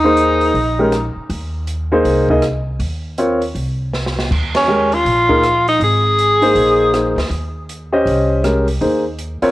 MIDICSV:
0, 0, Header, 1, 6, 480
1, 0, Start_track
1, 0, Tempo, 375469
1, 1661, Time_signature, 4, 2, 24, 8
1, 12161, End_track
2, 0, Start_track
2, 0, Title_t, "Grand piano"
2, 0, Program_c, 0, 0
2, 51, Note_on_c, 0, 58, 66
2, 55, Note_on_c, 0, 63, 59
2, 61, Note_on_c, 0, 68, 61
2, 64, Note_on_c, 0, 72, 68
2, 668, Note_off_c, 0, 58, 0
2, 670, Note_off_c, 0, 63, 0
2, 673, Note_off_c, 0, 68, 0
2, 675, Note_off_c, 0, 72, 0
2, 1010, Note_on_c, 0, 56, 65
2, 1010, Note_on_c, 0, 61, 60
2, 1014, Note_on_c, 0, 67, 56
2, 1021, Note_on_c, 0, 70, 68
2, 1165, Note_off_c, 0, 56, 0
2, 1165, Note_off_c, 0, 61, 0
2, 1168, Note_off_c, 0, 67, 0
2, 1171, Note_off_c, 0, 70, 0
2, 2449, Note_on_c, 0, 58, 72
2, 2456, Note_on_c, 0, 63, 70
2, 2458, Note_on_c, 0, 68, 68
2, 2461, Note_on_c, 0, 72, 79
2, 2897, Note_off_c, 0, 58, 0
2, 2901, Note_off_c, 0, 63, 0
2, 2902, Note_off_c, 0, 68, 0
2, 2904, Note_off_c, 0, 72, 0
2, 2934, Note_on_c, 0, 58, 69
2, 2936, Note_on_c, 0, 63, 61
2, 2942, Note_on_c, 0, 68, 60
2, 2946, Note_on_c, 0, 75, 73
2, 3088, Note_off_c, 0, 58, 0
2, 3089, Note_off_c, 0, 63, 0
2, 3092, Note_off_c, 0, 68, 0
2, 3094, Note_off_c, 0, 75, 0
2, 4068, Note_on_c, 0, 60, 59
2, 4075, Note_on_c, 0, 65, 57
2, 4077, Note_on_c, 0, 70, 52
2, 4078, Note_on_c, 0, 73, 68
2, 4340, Note_off_c, 0, 60, 0
2, 4344, Note_off_c, 0, 65, 0
2, 4344, Note_off_c, 0, 70, 0
2, 4345, Note_off_c, 0, 73, 0
2, 5980, Note_on_c, 0, 56, 56
2, 5982, Note_on_c, 0, 61, 53
2, 5988, Note_on_c, 0, 67, 54
2, 5990, Note_on_c, 0, 70, 62
2, 6256, Note_off_c, 0, 56, 0
2, 6257, Note_off_c, 0, 61, 0
2, 6260, Note_off_c, 0, 67, 0
2, 6261, Note_off_c, 0, 70, 0
2, 6761, Note_on_c, 0, 58, 59
2, 6764, Note_on_c, 0, 63, 58
2, 6768, Note_on_c, 0, 68, 58
2, 6769, Note_on_c, 0, 70, 74
2, 6922, Note_off_c, 0, 58, 0
2, 6923, Note_off_c, 0, 63, 0
2, 6925, Note_off_c, 0, 68, 0
2, 6925, Note_off_c, 0, 70, 0
2, 8206, Note_on_c, 0, 63, 64
2, 8211, Note_on_c, 0, 58, 68
2, 8216, Note_on_c, 0, 68, 67
2, 8219, Note_on_c, 0, 72, 79
2, 8826, Note_off_c, 0, 63, 0
2, 8828, Note_off_c, 0, 58, 0
2, 8831, Note_off_c, 0, 68, 0
2, 8832, Note_off_c, 0, 72, 0
2, 8861, Note_on_c, 0, 58, 53
2, 8864, Note_on_c, 0, 63, 47
2, 8866, Note_on_c, 0, 68, 47
2, 8867, Note_on_c, 0, 72, 52
2, 9135, Note_off_c, 0, 58, 0
2, 9136, Note_off_c, 0, 63, 0
2, 9137, Note_off_c, 0, 68, 0
2, 9138, Note_off_c, 0, 72, 0
2, 10128, Note_on_c, 0, 67, 60
2, 10131, Note_on_c, 0, 61, 68
2, 10135, Note_on_c, 0, 72, 60
2, 10139, Note_on_c, 0, 75, 74
2, 10745, Note_off_c, 0, 67, 0
2, 10747, Note_off_c, 0, 61, 0
2, 10749, Note_off_c, 0, 72, 0
2, 10751, Note_off_c, 0, 75, 0
2, 10785, Note_on_c, 0, 61, 47
2, 10787, Note_on_c, 0, 56, 53
2, 10789, Note_on_c, 0, 67, 51
2, 10793, Note_on_c, 0, 70, 60
2, 11056, Note_off_c, 0, 61, 0
2, 11057, Note_off_c, 0, 56, 0
2, 11058, Note_off_c, 0, 67, 0
2, 11060, Note_off_c, 0, 70, 0
2, 11257, Note_on_c, 0, 58, 50
2, 11259, Note_on_c, 0, 63, 49
2, 11265, Note_on_c, 0, 68, 46
2, 11270, Note_on_c, 0, 72, 58
2, 11531, Note_off_c, 0, 58, 0
2, 11532, Note_off_c, 0, 63, 0
2, 11535, Note_off_c, 0, 68, 0
2, 11538, Note_off_c, 0, 72, 0
2, 12042, Note_on_c, 0, 65, 66
2, 12046, Note_on_c, 0, 60, 71
2, 12050, Note_on_c, 0, 70, 69
2, 12054, Note_on_c, 0, 73, 82
2, 12161, Note_off_c, 0, 60, 0
2, 12161, Note_off_c, 0, 65, 0
2, 12161, Note_off_c, 0, 70, 0
2, 12161, Note_off_c, 0, 73, 0
2, 12161, End_track
3, 0, Start_track
3, 0, Title_t, "Tenor saxophone"
3, 0, Program_c, 1, 66
3, 0, Note_on_c, 1, 63, 90
3, 1443, Note_off_c, 1, 63, 0
3, 5836, Note_on_c, 1, 61, 79
3, 6313, Note_on_c, 1, 65, 87
3, 6332, Note_off_c, 1, 61, 0
3, 7260, Note_off_c, 1, 65, 0
3, 7270, Note_on_c, 1, 63, 85
3, 7422, Note_off_c, 1, 63, 0
3, 7460, Note_on_c, 1, 68, 99
3, 9133, Note_off_c, 1, 68, 0
3, 12161, End_track
4, 0, Start_track
4, 0, Title_t, "Upright bass"
4, 0, Program_c, 2, 32
4, 0, Note_on_c, 2, 39, 78
4, 648, Note_off_c, 2, 39, 0
4, 689, Note_on_c, 2, 34, 79
4, 1429, Note_off_c, 2, 34, 0
4, 1656, Note_on_c, 2, 39, 84
4, 2571, Note_off_c, 2, 39, 0
4, 2614, Note_on_c, 2, 36, 79
4, 3530, Note_off_c, 2, 36, 0
4, 3572, Note_on_c, 2, 39, 82
4, 4489, Note_off_c, 2, 39, 0
4, 4534, Note_on_c, 2, 36, 73
4, 5451, Note_off_c, 2, 36, 0
4, 5508, Note_on_c, 2, 39, 84
4, 6417, Note_off_c, 2, 39, 0
4, 6459, Note_on_c, 2, 34, 80
4, 7372, Note_off_c, 2, 34, 0
4, 7414, Note_on_c, 2, 32, 84
4, 8329, Note_off_c, 2, 32, 0
4, 8378, Note_on_c, 2, 34, 82
4, 9113, Note_off_c, 2, 34, 0
4, 9154, Note_on_c, 2, 38, 68
4, 9322, Note_off_c, 2, 38, 0
4, 9328, Note_on_c, 2, 39, 81
4, 10245, Note_off_c, 2, 39, 0
4, 10296, Note_on_c, 2, 36, 78
4, 11208, Note_off_c, 2, 36, 0
4, 11260, Note_on_c, 2, 39, 81
4, 11991, Note_off_c, 2, 39, 0
4, 12161, End_track
5, 0, Start_track
5, 0, Title_t, "Muted upright bass strokes"
5, 1482, Note_on_c, 9, 29, 36
5, 1610, Note_off_c, 9, 29, 0
5, 12044, Note_on_c, 9, 29, 38
5, 12161, Note_off_c, 9, 29, 0
5, 12161, End_track
6, 0, Start_track
6, 0, Title_t, "Drums"
6, 215, Note_on_c, 9, 42, 53
6, 343, Note_off_c, 9, 42, 0
6, 523, Note_on_c, 9, 46, 38
6, 650, Note_off_c, 9, 46, 0
6, 702, Note_on_c, 9, 46, 42
6, 830, Note_off_c, 9, 46, 0
6, 1179, Note_on_c, 9, 42, 45
6, 1181, Note_on_c, 9, 37, 54
6, 1307, Note_off_c, 9, 42, 0
6, 1309, Note_off_c, 9, 37, 0
6, 1659, Note_on_c, 9, 46, 43
6, 1787, Note_off_c, 9, 46, 0
6, 2136, Note_on_c, 9, 42, 51
6, 2264, Note_off_c, 9, 42, 0
6, 2621, Note_on_c, 9, 46, 44
6, 2748, Note_off_c, 9, 46, 0
6, 2924, Note_on_c, 9, 36, 54
6, 3052, Note_off_c, 9, 36, 0
6, 3096, Note_on_c, 9, 42, 46
6, 3097, Note_on_c, 9, 37, 54
6, 3223, Note_off_c, 9, 42, 0
6, 3225, Note_off_c, 9, 37, 0
6, 3576, Note_on_c, 9, 46, 44
6, 3704, Note_off_c, 9, 46, 0
6, 4062, Note_on_c, 9, 42, 52
6, 4190, Note_off_c, 9, 42, 0
6, 4368, Note_on_c, 9, 46, 37
6, 4496, Note_off_c, 9, 46, 0
6, 4545, Note_on_c, 9, 46, 43
6, 4672, Note_off_c, 9, 46, 0
6, 5029, Note_on_c, 9, 38, 41
6, 5156, Note_off_c, 9, 38, 0
6, 5194, Note_on_c, 9, 38, 55
6, 5321, Note_off_c, 9, 38, 0
6, 5350, Note_on_c, 9, 38, 73
6, 5478, Note_off_c, 9, 38, 0
6, 5509, Note_on_c, 9, 36, 67
6, 5518, Note_on_c, 9, 49, 64
6, 5637, Note_off_c, 9, 36, 0
6, 5646, Note_off_c, 9, 49, 0
6, 5812, Note_on_c, 9, 51, 65
6, 5814, Note_on_c, 9, 38, 79
6, 5940, Note_off_c, 9, 51, 0
6, 5941, Note_off_c, 9, 38, 0
6, 6292, Note_on_c, 9, 46, 36
6, 6419, Note_off_c, 9, 46, 0
6, 6472, Note_on_c, 9, 46, 43
6, 6600, Note_off_c, 9, 46, 0
6, 6772, Note_on_c, 9, 36, 51
6, 6900, Note_off_c, 9, 36, 0
6, 6948, Note_on_c, 9, 42, 49
6, 6950, Note_on_c, 9, 37, 53
6, 7076, Note_off_c, 9, 42, 0
6, 7077, Note_off_c, 9, 37, 0
6, 7259, Note_on_c, 9, 46, 38
6, 7387, Note_off_c, 9, 46, 0
6, 7428, Note_on_c, 9, 46, 43
6, 7556, Note_off_c, 9, 46, 0
6, 7910, Note_on_c, 9, 42, 53
6, 8038, Note_off_c, 9, 42, 0
6, 8210, Note_on_c, 9, 46, 36
6, 8337, Note_off_c, 9, 46, 0
6, 8382, Note_on_c, 9, 46, 42
6, 8509, Note_off_c, 9, 46, 0
6, 8868, Note_on_c, 9, 42, 49
6, 8869, Note_on_c, 9, 37, 53
6, 8995, Note_off_c, 9, 42, 0
6, 8997, Note_off_c, 9, 37, 0
6, 9179, Note_on_c, 9, 46, 36
6, 9180, Note_on_c, 9, 38, 49
6, 9307, Note_off_c, 9, 46, 0
6, 9308, Note_off_c, 9, 38, 0
6, 9346, Note_on_c, 9, 46, 41
6, 9473, Note_off_c, 9, 46, 0
6, 9832, Note_on_c, 9, 42, 50
6, 9960, Note_off_c, 9, 42, 0
6, 10313, Note_on_c, 9, 46, 42
6, 10441, Note_off_c, 9, 46, 0
6, 10789, Note_on_c, 9, 42, 46
6, 10790, Note_on_c, 9, 37, 54
6, 10917, Note_off_c, 9, 42, 0
6, 10918, Note_off_c, 9, 37, 0
6, 11092, Note_on_c, 9, 46, 38
6, 11220, Note_off_c, 9, 46, 0
6, 11268, Note_on_c, 9, 46, 42
6, 11396, Note_off_c, 9, 46, 0
6, 11741, Note_on_c, 9, 42, 50
6, 11869, Note_off_c, 9, 42, 0
6, 12045, Note_on_c, 9, 46, 37
6, 12161, Note_off_c, 9, 46, 0
6, 12161, End_track
0, 0, End_of_file